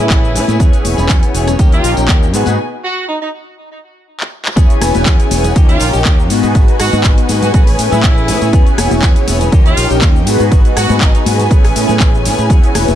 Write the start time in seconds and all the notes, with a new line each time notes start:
Already playing: A3 C#4 E4 G#4 B4 G#5
0.00 E4
0.10 A1 E3 B3 C#4 G#4, kick, clap, closed hi-hat, shaker
0.24 tambourine, shaker
0.34 A2 E3 B3 C#4 G#4, open hi-hat, shaker
0.47 A2 B3 C#4 G#4, closed hi-hat, tambourine, high conga, shaker
0.59 E2 E3 B3 C#4 E4 F#4 G#4 B4 C#5, kick, closed hi-hat, tambourine, shaker
0.72 B3 C#4 G#4, closed hi-hat, tambourine, shaker
0.85 E1, open hi-hat, high conga, shaker
0.97 E1 B3 C#4 G#4, tambourine, low conga, shaker
1.09 E2 E3 B3 C#4 G#4, kick, clap, closed hi-hat, shaker
1.23 closed hi-hat, tambourine, shaker
1.33 E1 E3 B3 C#4 G#4, open hi-hat, shaker
1.47 B3 C#4 G#4, cross-stick, closed hi-hat, tambourine, low conga, shaker
1.58 D#2 A#3 C#4 D#4 F4 G4 A#4 G5, kick, closed hi-hat, tambourine, shaker
1.72 F4, closed hi-hat, tambourine, shaker
1.83 A#1 A#3 C#4 G4, open hi-hat, shaker
1.97 A#1, closed hi-hat, tambourine, shaker
2.08 D#2 A#3 C#4 G4, kick, clap, closed hi-hat, shaker
2.22 tambourine, shaker
2.33 G#2 F#3 B3 D#4 F#4 G#4 B4 G#5, open hi-hat, shaker
2.46 G#2 B3 D#4 F#4, closed hi-hat, tambourine, high conga, shaker
2.84 F#4
3.08 D#4
3.21 D#4
4.20 clap
4.45 clap
4.56 E2 E3 B3 C#4 E4 F#4 G#4 B4 C#5 G#5, kick, closed hi-hat, tambourine, shaker
4.70 closed hi-hat, shaker
4.81 E1 E3 B3 C#4 G#4, cross-stick, open hi-hat, ride, tambourine, high conga, shaker
4.94 E1, closed hi-hat, tambourine, high conga, shaker
5.06 E2 E3 B3 C#4 G#4, kick, clap, closed hi-hat, shaker
5.20 closed hi-hat, shaker
5.30 E1 E3 B3 C#4 G#4, open hi-hat, ride, tambourine, high conga, shaker
5.43 B3 C#4 G#4, closed hi-hat, tambourine, low conga, shaker
5.55 D#2 A#3 C#4 D#4 F4 G4 A#4 C#5 G5, kick, closed hi-hat, shaker
5.68 C#4 F4 G4, closed hi-hat, shaker
5.80 A#1, open hi-hat, ride, tambourine, shaker
5.93 A#1 C#4 G4, closed hi-hat, tambourine, shaker
6.05 D#2 A#3 C#4 G4, kick, clap, closed hi-hat, shaker
6.20 shaker
6.29 G#2 D#3 B3 D#4 F#4 G#4 B4 G#5, open hi-hat, ride, tambourine, shaker
6.43 G#2 B3 D#4 F#4, closed hi-hat, tambourine, shaker
6.55 G#1 D#3 B3 D#4 F#4, kick, closed hi-hat, tambourine, shaker
6.68 closed hi-hat, shaker
6.79 G#2 D#3 B3 D#4 F#4, cross-stick, open hi-hat, ride, tambourine, shaker
6.92 G#2, closed hi-hat, tambourine, high conga, shaker
7.04 G#1 D#3 B3 D#4 F#4, kick, clap, closed hi-hat, shaker
7.18 closed hi-hat, shaker
7.29 G#2 D#3 B3 D#4 F#4, open hi-hat, ride, tambourine, high conga, shaker
7.42 B3 D#4 F#4, closed hi-hat, tambourine, low conga, shaker
7.53 A1 E3 A3 B3 C#4 E4 F#4 G#4 B4, kick, closed hi-hat, shaker
7.66 B3 C#4 G#4, open hi-hat, shaker
7.79 A2, open hi-hat, ride, tambourine, shaker
7.91 A2 B3 C#4 E4 G#4, closed hi-hat, tambourine, low conga, shaker
8.03 A1 E3, kick, clap, closed hi-hat, shaker
8.18 shaker
8.28 A2 E3 B3 C#4 G#4, open hi-hat, ride, tambourine, shaker
8.41 A2 B3 C#4 G#4, closed hi-hat, tambourine, shaker
8.52 E2 E3 B3 C#4 E4 F#4 G#4 B4 C#5, kick, closed hi-hat, tambourine, shaker
8.67 closed hi-hat, shaker
8.77 E1 E3 B3 C#4 G#4, cross-stick, open hi-hat, ride, tambourine, high conga, shaker
8.91 E1, closed hi-hat, tambourine, high conga, shaker
9.02 E2 E3 B3 C#4 G#4, kick, clap, closed hi-hat, tambourine, shaker
9.16 closed hi-hat, shaker
9.27 E1 E3 B3 C#4 G#4, open hi-hat, ride, tambourine, high conga, shaker
9.40 B3 C#4 G#4, closed hi-hat, tambourine, low conga, shaker
9.52 D#2 A#3 C#4 D#4 F4 G4 A#4 G5, kick, closed hi-hat, tambourine, shaker
9.65 C#4 F4 G4, closed hi-hat, shaker
9.77 A#1, open hi-hat, ride, tambourine, shaker
9.90 A#1 C#4 G4, closed hi-hat, tambourine, shaker
10.01 D#2 A#3 C#4 G4, kick, clap, closed hi-hat, tambourine, shaker
10.16 shaker
10.26 G#2 F#3 B3 D#4 F#4 G#4 B4 G#5, open hi-hat, ride, tambourine, shaker
10.39 G#2 B3 D#4 F#4, closed hi-hat, tambourine, shaker
10.51 G#1 F#3 B3 D#4 F#4, kick, closed hi-hat, tambourine, shaker
10.65 closed hi-hat, shaker
10.76 G#2 F#3 B3 D#4 F#4, cross-stick, open hi-hat, ride, tambourine, shaker
10.89 G#2, closed hi-hat, tambourine, high conga, shaker
11.01 G#1 F#3 B3 D#4 F#4, kick, clap, closed hi-hat, tambourine, shaker
11.15 D#4, closed hi-hat, shaker
11.25 G#2 F#3 B3 D#4 F#4, open hi-hat, ride, tambourine, high conga, shaker
11.38 B3 D#4 F#4, closed hi-hat, tambourine, low conga, shaker
11.50 A1 E3 A3 B3 C#4 E4 G#4 B4, kick, closed hi-hat, shaker
11.63 B3 C#4 G#4, cross-stick, open hi-hat, shaker
11.76 A2, open hi-hat, ride, tambourine, shaker
11.88 A2 B3 C#4 G#4, closed hi-hat, tambourine, low conga, shaker
11.99 A1 E3 B3 C#4 G#4, kick, clap, closed hi-hat, tambourine, shaker
12.15 shaker
12.24 A2 E3 B3 C#4 G#4, open hi-hat, ride, tambourine, shaker
12.38 A2 B3 C#4 G#4, closed hi-hat, tambourine, shaker
12.49 E2 E3 B3 C#4 E4 F#4 G#4 B4 C#5, kick, closed hi-hat, tambourine, shaker
12.64 closed hi-hat, shaker
12.74 E1 E3 B3 C#4 G#4, cross-stick, open hi-hat, ride, tambourine, high conga, shaker
12.88 E1, closed hi-hat, tambourine, high conga, shaker